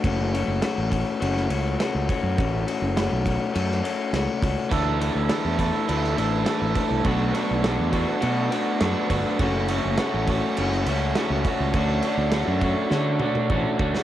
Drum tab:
CC |----------------|----------------|x---------------|----------------|
RD |x-x-x-x-x-x-x-x-|x-x-x-x-x-x-x-x-|--x-x-x-x-x-x-x-|x-x-x-x-x-x-x-x-|
SD |----o----o--o---|----o----o--o---|----o----o--o---|----o-------o---|
T2 |----------------|----------------|----------------|----------------|
BD |o-----o-------o-|o-----o-------o-|o-----o-------o-|o-----o-------o-|

CC |----------------|----------------|
RD |x-x-x-x-x-x-x-x-|x-x-x-x---------|
SD |----o----o--o---|----o---o------o|
T2 |----------------|----------oo----|
BD |o-----o-------o-|o-----o-----o-o-|